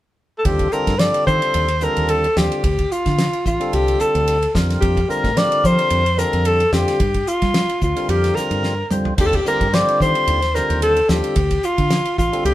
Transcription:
0.38 alto saxophone A4
0.45 fingered electric bass D#2, tonewheel organ D3 G3 C4 F4 A4, alto saxophone G4, kick, ride
0.59 kick, ride
0.72 tonewheel organ D3 G3 C4 F4 A4, alto saxophone A#4, hi-hat pedal
0.87 fingered electric bass G2, kick, snare, ride
0.99 tonewheel organ D3 G3 C4 F4 A4, alto saxophone D5, snare, ride
1.14 ride
1.27 fingered electric bass D#3, alto saxophone C5, kick, hi-hat pedal
1.42 ride
1.54 fingered electric bass D#2, ride
1.68 ride
1.81 tonewheel organ D3 G3 C4 F4 A4, alto saxophone A#4, hi-hat pedal
1.96 fingered electric bass D#2, ride
2.09 alto saxophone A4, ride
2.24 ride
2.36 fingered electric bass D#2, tonewheel organ D3 G3 C4 F4 G4, alto saxophone G4, snare, hi-hat pedal
2.52 ride
2.64 fingered electric bass D2, kick, ride
2.79 kick, ride
2.92 alto saxophone F4, hi-hat pedal
3.06 fingered electric bass D3, kick, snare, ride
3.18 snare, ride
3.33 ride
3.46 fingered electric bass A1, alto saxophone F4, kick, hi-hat pedal
3.60 tonewheel organ D3 G3 C4 F4 A4, ride
3.73 fingered electric bass C2, alto saxophone G4, ride
3.88 ride
4.00 alto saxophone A4, muted fingered electric bass stroke, hi-hat pedal
4.15 fingered electric bass D2, ride
4.28 ride
4.42 ride
4.54 fingered electric bass F2, tonewheel organ D3 G3 C4 F4 A#4, kick, snare, hi-hat pedal
4.70 snare, ride
4.80 fingered electric bass F2, alto saxophone G4, kick, ride
4.97 kick, ride
5.08 tonewheel organ D3 G3 C4 F4 A#4, alto saxophone A#4, hi-hat pedal
5.24 fingered electric bass A2, kick, snare, ride
5.36 tonewheel organ D3 G3 C4 F4 A#4, alto saxophone D5, snare, ride
5.52 ride
5.64 fingered electric bass F3, alto saxophone C5, kick, hi-hat pedal
5.79 ride
5.90 fingered electric bass F2, ride
6.06 ride
6.17 tonewheel organ D3 G3 C4 F4 A4, alto saxophone A#4, snare, hi-hat pedal
6.33 fingered electric bass F2, ride
6.45 alto saxophone A4, ride
6.60 ride
6.72 fingered electric bass F2, tonewheel organ D3 G3 C4 F4 G4, alto saxophone G4, snare, hi-hat pedal
6.88 snare, ride
7.00 fingered electric bass G2, kick, ride
7.14 kick, ride
7.27 alto saxophone F4, hi-hat pedal
7.42 fingered electric bass G3, kick, snare, ride
7.54 snare, ride
7.69 ride
7.81 fingered electric bass D2, alto saxophone F4, kick, hi-hat pedal
7.96 tonewheel organ D3 G3 C4 F4 A#4, ride
8.09 fingered electric bass F2, alto saxophone G4, ride
8.24 snare, ride
8.35 alto saxophone A#4, muted fingered electric bass stroke, snare, hi-hat pedal
8.51 fingered electric bass G2, ride
8.63 snare
8.91 tonewheel organ D3 G3 C4 F4 C5, fingered electric bass G3, hi-hat pedal, mid tom
9.05 floor tom
9.17 fingered electric bass D#2, tonewheel organ D3 G3 C4 F4 A4, alto saxophone G4, kick, crash, ride
9.26 alto saxophone A4
9.33 alto saxophone G4, kick, ride
9.45 tonewheel organ D3 G3 C4 F4 G4, alto saxophone A#4, hi-hat pedal
9.61 fingered electric bass G2, kick, ride
9.73 tonewheel organ D3 G3 C4 F4 C5, alto saxophone D5, snare, ride
9.88 ride
10.00 fingered electric bass D#3, alto saxophone C5, kick, hi-hat pedal
10.15 ride
10.27 fingered electric bass D#2, ride
10.42 snare, ride
10.55 tonewheel organ D3 G3 C4 F4 C5, alto saxophone A#4, snare, hi-hat pedal
10.70 fingered electric bass D#2, ride
10.82 alto saxophone A4, ride
10.96 ride
11.08 fingered electric bass D#2, tonewheel organ D3 G3 C4 F4 A4, alto saxophone G4, snare, hi-hat pedal
11.24 ride
11.36 fingered electric bass D2, kick, ride
11.51 kick, ride
11.63 alto saxophone F4, hi-hat pedal
11.78 fingered electric bass D3, kick, ride
11.90 snare, ride
12.05 ride
12.18 fingered electric bass A1, alto saxophone F4, kick, hi-hat pedal
12.32 tonewheel organ D3 G3 C4 F4 A4, ride
12.45 fingered electric bass C2, alto saxophone G4, ride

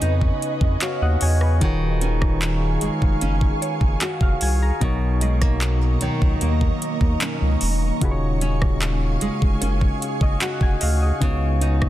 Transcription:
Already playing: synth keys C#3 B3 D#4 F#4 C#5, nylon-string guitar C#3 B3 F#4, ambient pad B4 D#5 G#5 C#6, synth pluck D#5 F#5
0.01 sub bass F2, nylon-string guitar D#4, closed hi-hat
0.21 kick
0.42 closed hi-hat
0.61 sub bass F2, kick
0.81 nylon-string guitar F#4, synth keys C#5 F5, clap, closed hi-hat
1.02 sub bass D#2, synth keys D#5 F#5
1.21 sub bass E2, synth keys C#5 G#5, open hi-hat
1.41 synth keys B4, cross-stick
1.60 sub bass D#1, synth keys D#3 D#4 F4 F#4 G#4, nylon-string guitar D#3, ambient pad G#4 F5 G#5 C#6, kick, closed hi-hat
1.65 synth keys C#5
2.01 nylon-string guitar C#4, closed hi-hat
2.22 kick, cross-stick
2.42 clap, closed hi-hat
2.81 sub bass F1, nylon-string guitar G#3, closed hi-hat
3.02 sub bass F1, kick
3.21 sub bass F#1, nylon-string guitar C#4, closed hi-hat
3.41 kick
3.62 synth pluck C#5, closed hi-hat
3.81 sub bass F#1, kick
4.01 nylon-string guitar F#4, clap, closed hi-hat
4.21 sub bass F1, synth keys F5, kick
4.41 sub bass C2, synth keys G#5, open hi-hat
4.62 synth keys A#5
4.80 sub bass B1, synth keys B2 F#3 D#4 A#4, nylon-string guitar B2, ambient pad A#3 D#5 A#5 C#6, kick, closed hi-hat
4.85 synth keys C#5
5.21 nylon-string guitar G#3, synth pluck D#5, closed hi-hat
5.41 nylon-string guitar A#3, kick, cross-stick
5.61 clap, closed hi-hat
6.01 sub bass C#2, nylon-string guitar D#3, synth pluck C#5, closed hi-hat
6.22 sub bass C#2, kick
6.41 sub bass D#2, nylon-string guitar A#3, closed hi-hat
6.61 kick
6.82 closed hi-hat
7.01 sub bass D#2, kick
7.21 nylon-string guitar C#4, clap, closed hi-hat
7.41 sub bass C#2
7.61 sub bass E1, open hi-hat
8.00 sub bass D#1, synth keys C#3 D#4 F4 F#4 G#4, ambient pad G#4 F5 G#5, kick, closed hi-hat
8.05 synth keys B4
8.11 synth keys C#5
8.41 nylon-string guitar C#4, closed hi-hat
8.62 kick, cross-stick
8.82 clap, closed hi-hat
9.21 sub bass F1, nylon-string guitar G#3, closed hi-hat
9.42 sub bass F1, kick
9.61 sub bass F#1, nylon-string guitar C#4, synth pluck A#4, closed hi-hat
9.81 kick
10.02 closed hi-hat
10.21 sub bass F#1, synth keys D#5, kick
10.41 nylon-string guitar F#4, synth keys F#5, clap, closed hi-hat
10.61 sub bass F1, synth keys G#5, kick
10.81 sub bass D2, synth pluck D#5, synth keys F5, open hi-hat
11.03 synth keys D#5
11.20 sub bass C#2, synth keys C#3 B3 D#4 F#4, nylon-string guitar C#3, ambient pad B4 D#5 F#5, kick, closed hi-hat
11.24 synth keys C#5
11.62 nylon-string guitar D#4, closed hi-hat
11.82 kick, cross-stick

